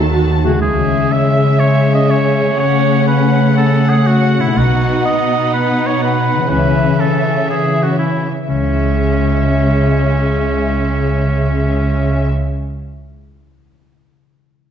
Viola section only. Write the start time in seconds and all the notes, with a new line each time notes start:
Already playing: A4
0.12 F#4
0.46 G#4
0.63 G#3
2.60 A3
4.55 B3
6.52 E3
8.49 G#3